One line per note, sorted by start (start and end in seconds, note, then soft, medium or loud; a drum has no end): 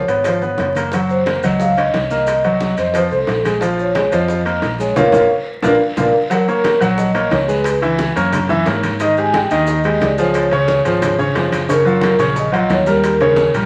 0.07 0.55 G#1 medium
0.07 0.22 B3 medium
0.07 0.22 B4 medium
0.07 0.71 C#5 medium
0.07 high timbale medium
0.07 maracas medium
0.24 0.39 F3 medium
0.24 0.40 F4 medium
0.24 high bongo medium
0.24 high conga soft
0.24 high timbale medium
0.24 maracas medium
0.41 0.70 B3 medium
0.41 0.70 B4 medium
0.41 high bongo soft
0.41 high conga soft
0.41 maracas soft
0.58 1.38 F#1 medium
0.58 high bongo soft
0.58 low bongo medium
0.58 high conga soft
0.58 high timbale medium
0.58 low timbale medium
0.58 maracas soft
0.75 0.90 A#3 medium
0.75 0.90 A#4 medium
0.75 high bongo soft
0.75 high conga medium
0.75 high timbale medium
0.75 maracas medium
0.92 1.20 F#3 medium
0.92 1.21 F#4 medium
0.92 high bongo medium
0.92 high conga soft
0.92 high timbale medium
0.92 long guiro medium
0.92 maracas medium
1.09 1.45 C5 medium
1.09 high bongo soft
1.09 high conga soft
1.09 maracas soft
1.26 1.40 A#3 medium
1.26 1.41 A#4 medium
1.26 high bongo medium
1.26 high conga medium
1.26 high timbale medium
1.26 short guiro medium
1.26 maracas soft
1.43 1.90 C#2 medium
1.43 1.71 F#3 medium
1.43 1.71 F#4 medium
1.43 1.61 D#5 loud
1.43 high conga soft
1.43 high timbale medium
1.43 short guiro medium
1.43 maracas medium
1.60 1.77 F5 loud
1.60 high bongo medium
1.60 high conga soft
1.60 long guiro medium
1.60 maracas medium
1.77 2.05 C#4 medium
1.77 2.05 C#5 medium
1.77 2.09 D#5 loud
1.77 high bongo soft
1.77 high conga soft
1.77 high timbale medium
1.77 maracas soft
1.94 2.72 C2 medium
1.94 high bongo soft
1.94 low bongo medium
1.94 high conga medium
1.94 high timbale medium
1.94 short guiro medium
1.94 maracas soft
2.10 2.38 A#3 medium
2.10 2.38 A#4 medium
2.10 2.93 D#5 loud
2.10 high bongo soft
2.10 high conga medium
2.10 short guiro medium
2.10 maracas medium
2.27 high bongo medium
2.27 high conga soft
2.27 high timbale loud
2.27 maracas medium
2.44 2.72 F#3 medium
2.44 2.72 F#4 medium
2.44 high bongo soft
2.44 high conga soft
2.44 high timbale medium
2.44 maracas soft
2.60 high bongo medium
2.60 high conga medium
2.60 short guiro medium
2.60 maracas soft
2.77 3.09 F2 medium
2.77 2.92 C4 medium
2.77 2.92 C5 medium
2.77 high timbale medium
2.77 short guiro medium
2.77 maracas medium
2.91 3.09 F3 medium
2.91 3.09 F4 medium
2.91 2.95 B4 medium
2.91 3.12 C5 medium
2.91 high bongo medium
2.91 high conga soft
2.91 high timbale medium
2.91 long guiro medium
2.91 maracas medium
3.10 3.27 C2 medium
3.10 3.39 C4 medium
3.10 3.42 A4 medium
3.10 3.39 C5 medium
3.10 high bongo soft
3.10 high conga soft
3.10 maracas soft
3.27 4.07 A#1 medium
3.27 high bongo soft
3.27 low bongo medium
3.27 high conga soft
3.27 high timbale medium
3.27 short guiro medium
3.27 maracas soft
3.44 3.59 G#3 medium
3.44 3.59 G#4 medium
3.44 high bongo soft
3.44 high conga medium
3.44 high timbale medium
3.44 short guiro medium
3.44 maracas medium
3.61 3.89 F3 medium
3.61 3.89 F4 medium
3.61 high bongo medium
3.61 high conga soft
3.61 high timbale medium
3.61 long guiro medium
3.61 maracas medium
3.78 4.14 C#5 medium
3.78 high bongo soft
3.78 high conga soft
3.78 maracas soft
3.95 4.09 G#3 medium
3.95 4.10 G#4 medium
3.95 high bongo medium
3.95 high conga medium
3.95 high timbale medium
3.95 short guiro medium
3.95 maracas soft
4.12 4.59 F2 medium
4.12 4.40 F3 medium
4.12 4.40 F4 medium
4.12 4.60 D#5 medium
4.12 high conga soft
4.12 high timbale medium
4.12 short guiro medium
4.12 maracas medium
4.28 high bongo medium
4.28 high conga soft
4.28 long guiro medium
4.28 maracas medium
4.45 4.73 A#3 medium
4.45 4.73 A#4 medium
4.45 high bongo soft
4.45 high conga soft
4.45 high timbale medium
4.45 maracas soft
4.62 4.94 A#1 medium
4.62 high bongo soft
4.62 low bongo medium
4.62 high conga medium
4.62 high timbale medium
4.62 short guiro medium
4.62 maracas soft
4.79 4.93 G#3 medium
4.79 4.94 G#4 medium
4.79 4.96 C#5 loud
4.79 high bongo soft
4.79 short guiro medium
4.79 maracas medium
4.96 5.09 A#1 medium
4.96 5.07 A#3 medium
4.96 5.07 C#4 medium
4.96 5.07 F4 medium
4.96 5.08 A#4 medium
4.96 5.08 C#5 medium
4.96 5.08 F5 medium
4.96 low bongo medium
4.96 low conga loud
4.96 high timbale loud
4.96 long guiro medium
4.96 maracas medium
5.12 5.26 A#1 medium
5.12 5.24 A#3 medium
5.12 5.24 C#4 loud
5.12 5.24 F4 loud
5.12 5.25 A#4 medium
5.12 5.25 C#5 medium
5.12 5.25 F5 medium
5.12 low bongo medium
5.12 low conga medium
5.12 high timbale medium
5.12 long guiro medium
5.12 maracas medium
5.62 5.76 A#1 medium
5.62 5.74 A#3 loud
5.62 5.74 D4 loud
5.62 5.74 F4 medium
5.62 5.75 A#4 medium
5.62 5.76 D5 medium
5.62 5.76 F5 medium
5.62 low bongo loud
5.62 low conga medium
5.62 high timbale loud
5.62 long guiro medium
5.62 maracas medium
5.97 6.10 A#1 medium
5.97 6.08 A#3 medium
5.97 6.08 D4 medium
5.97 6.08 F4 medium
5.97 6.09 A#4 medium
5.97 6.09 D5 medium
5.97 6.08 F5 medium
5.97 low bongo medium
5.97 low conga medium
5.97 high timbale medium
5.97 long guiro medium
5.97 maracas medium
6.30 6.44 F#3 medium
6.30 6.45 F#4 medium
6.30 6.79 A#4 medium
6.30 6.45 F#5 medium
6.30 high bongo medium
6.30 high conga soft
6.30 high timbale medium
6.30 long guiro medium
6.30 maracas medium
6.48 6.76 A#3 medium
6.48 6.76 A#4 medium
6.48 6.76 C#5 medium
6.48 high bongo soft
6.48 high conga soft
6.48 maracas soft
6.64 high bongo medium
6.64 high conga medium
6.64 high timbale medium
6.64 short guiro medium
6.64 maracas soft
6.80 7.28 A#1 medium
6.80 7.09 F#3 medium
6.80 7.09 F#4 loud
6.80 7.09 F#5 medium
6.80 high conga soft
6.80 high timbale medium
6.80 short guiro medium
6.80 maracas medium
6.98 7.33 D#5 loud
6.98 high bongo medium
6.98 high conga soft
6.98 long guiro medium
6.98 maracas medium
7.14 7.42 A#3 medium
7.14 7.43 A#4 medium
7.14 7.43 C#5 medium
7.14 high bongo soft
7.14 high conga soft
7.14 high timbale medium
7.14 maracas soft
7.31 8.10 C#2 medium
7.31 7.49 C#5 medium
7.31 high bongo soft
7.31 low bongo medium
7.31 high conga medium
7.31 high timbale medium
7.31 short guiro medium
7.31 maracas soft
7.48 7.76 G#3 medium
7.48 7.76 G#4 medium
7.48 7.76 B4 medium
7.48 8.12 B4 medium
7.48 high bongo soft
7.48 short guiro medium
7.48 maracas medium
7.64 high bongo medium
7.64 high conga soft
7.64 high timbale medium
7.64 maracas medium
7.81 8.10 E3 medium
7.81 8.10 E4 loud
7.81 8.10 E5 medium
7.81 high bongo soft
7.81 high conga soft
7.81 high timbale medium
7.81 maracas soft
7.99 high bongo medium
7.99 high conga medium
7.99 short guiro medium
7.99 maracas soft
8.16 8.63 F#2 medium
8.16 8.43 A#3 medium
8.16 8.44 A#4 medium
8.16 8.44 C#5 medium
8.16 high timbale medium
8.16 short guiro medium
8.16 maracas medium
8.32 high bongo medium
8.32 high conga soft
8.32 low conga medium
8.32 high timbale loud
8.32 long guiro medium
8.32 maracas medium
8.49 8.63 E3 medium
8.49 8.63 E4 medium
8.49 8.64 E5 medium
8.49 high bongo soft
8.49 high conga soft
8.49 low conga medium
8.49 maracas soft
8.66 9.45 G#2 medium
8.66 8.94 A#3 medium
8.66 8.94 A#4 medium
8.66 8.94 C#5 medium
8.66 high bongo soft
8.66 low bongo medium
8.66 high conga soft
8.66 high timbale medium
8.66 low timbale medium
8.66 short guiro medium
8.66 maracas soft
8.83 high bongo soft
8.83 high conga medium
8.83 high timbale medium
8.83 short guiro medium
8.83 maracas medium
9.00 9.14 D#3 medium
9.00 9.14 D#4 medium
9.00 9.14 D#5 medium
9.00 9.18 D#5 loud
9.00 high bongo medium
9.00 high conga soft
9.00 high timbale medium
9.00 long guiro medium
9.00 maracas medium
9.17 9.45 G#3 medium
9.17 9.45 G4 medium
9.17 9.45 G#4 medium
9.17 9.35 G#5 loud
9.17 high bongo soft
9.17 high conga soft
9.17 maracas soft
9.34 9.66 G5 medium
9.34 high bongo medium
9.34 high conga loud
9.34 high timbale medium
9.34 short guiro medium
9.34 maracas soft
9.50 9.98 D#2 medium
9.50 9.78 D#3 medium
9.50 9.79 D#4 loud
9.50 9.79 D#5 loud
9.50 high conga soft
9.50 high timbale medium
9.50 short guiro medium
9.50 maracas medium
9.67 10.03 D#5 loud
9.67 high bongo medium
9.67 high conga soft
9.67 long guiro medium
9.67 maracas medium
9.84 10.12 G#3 medium
9.84 10.12 G4 medium
9.84 10.12 G#4 medium
9.84 high bongo soft
9.84 high conga soft
9.84 high timbale medium
9.84 maracas soft
10.01 10.80 C#2 loud
10.01 10.20 D5 medium
10.01 high bongo soft
10.01 low bongo medium
10.01 high conga medium
10.01 high timbale medium
10.01 short guiro medium
10.01 maracas soft
10.18 10.46 F3 medium
10.18 10.46 F4 medium
10.18 10.46 G#4 medium
10.18 11.49 C#5 loud
10.18 high bongo soft
10.18 short guiro medium
10.18 maracas medium
10.34 high bongo medium
10.34 high conga soft
10.34 high timbale medium
10.34 maracas medium
10.51 10.79 C#3 medium
10.51 10.79 C#4 medium
10.51 10.80 C#5 medium
10.51 high bongo soft
10.51 high conga soft
10.51 high timbale medium
10.51 maracas soft
10.68 high bongo medium
10.68 high conga medium
10.68 short guiro medium
10.68 maracas soft
10.85 11.32 G#1 medium
10.85 11.13 F3 medium
10.85 11.13 F4 medium
10.85 11.13 G#4 medium
10.85 high timbale medium
10.85 short guiro medium
10.85 maracas medium
11.02 high bongo medium
11.02 high conga soft
11.02 low conga medium
11.02 high timbale loud
11.02 maracas medium
11.18 11.32 C#3 medium
11.18 11.33 C#4 medium
11.18 11.33 C#5 medium
11.18 high bongo soft
11.18 high conga soft
11.18 maracas soft
11.35 12.14 F#1 medium
11.35 11.63 F3 medium
11.35 11.63 F4 medium
11.35 11.63 G#4 medium
11.35 high bongo soft
11.35 low bongo medium
11.35 high timbale medium
11.35 low timbale medium
11.35 short guiro medium
11.35 maracas soft
11.52 high bongo soft
11.52 high conga medium
11.52 high timbale medium
11.52 short guiro medium
11.52 maracas medium
11.69 11.83 C#3 medium
11.69 11.83 C#4 medium
11.69 12.17 A#4 medium
11.69 11.83 C#5 medium
11.69 high bongo medium
11.69 high conga soft
11.69 high timbale medium
11.69 long guiro medium
11.69 maracas medium
11.85 12.13 F#3 medium
11.85 12.13 F4 medium
11.85 12.13 F#4 medium
11.85 high bongo soft
11.85 high conga soft
11.85 maracas soft
12.01 high bongo medium
12.01 high conga loud
12.01 high timbale loud
12.01 short guiro medium
12.01 maracas soft
12.18 12.66 A#1 medium
12.18 12.47 C#3 medium
12.18 12.47 C#4 medium
12.18 12.47 C#5 medium
12.18 high conga soft
12.18 high timbale medium
12.18 short guiro medium
12.18 maracas medium
12.36 12.72 D#5 loud
12.36 high bongo medium
12.36 high conga soft
12.36 long guiro medium
12.36 maracas medium
12.52 12.80 F#3 medium
12.52 12.80 F4 medium
12.52 12.81 F#4 medium
12.52 high bongo soft
12.52 high conga soft
12.52 high timbale medium
12.52 maracas soft
12.70 13.48 D#2 loud
12.70 12.89 C#5 medium
12.70 high bongo soft
12.70 low bongo medium
12.70 high conga medium
12.70 high timbale medium
12.70 short guiro medium
12.70 maracas soft
12.86 13.14 G3 medium
12.86 13.14 G4 medium
12.86 13.15 A#4 medium
12.86 13.52 A#4 medium
12.86 high bongo soft
12.86 high conga medium
12.86 short guiro medium
12.86 maracas medium
13.04 high bongo medium
13.04 high conga soft
13.04 high timbale medium
13.04 maracas medium
13.20 13.48 C#3 medium
13.20 13.49 C#4 medium
13.20 13.49 C#5 medium
13.20 high bongo soft
13.20 high conga soft
13.20 high timbale medium
13.20 maracas soft
13.36 high bongo medium
13.36 high conga loud
13.36 short guiro medium
13.36 maracas soft
13.54 13.66 A#1 medium
13.54 13.66 G3 medium
13.54 13.66 G4 medium
13.54 13.66 A#4 medium
13.54 high timbale medium
13.54 short guiro medium
13.54 maracas medium